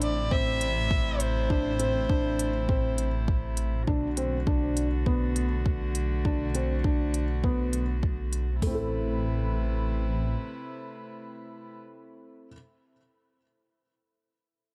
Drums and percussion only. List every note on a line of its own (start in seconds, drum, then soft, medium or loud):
0.02 closed hi-hat medium
0.31 kick loud
0.61 closed hi-hat medium
0.91 kick medium
1.20 closed hi-hat medium
1.50 kick medium
1.80 closed hi-hat medium
2.09 kick loud
2.39 closed hi-hat medium
2.69 kick loud
2.98 closed hi-hat medium
3.28 kick loud
3.57 closed hi-hat medium
3.87 kick medium
4.17 closed hi-hat medium
4.47 kick medium
4.77 closed hi-hat medium
5.06 kick loud
5.36 closed hi-hat medium
5.66 kick medium
5.95 closed hi-hat medium
6.25 kick medium
6.55 closed hi-hat medium
6.84 kick medium
7.14 closed hi-hat medium
7.44 kick medium
7.73 closed hi-hat medium
8.03 kick medium
8.33 closed hi-hat medium
8.62 kick medium
8.62 floor tom medium
8.62 open hi-hat medium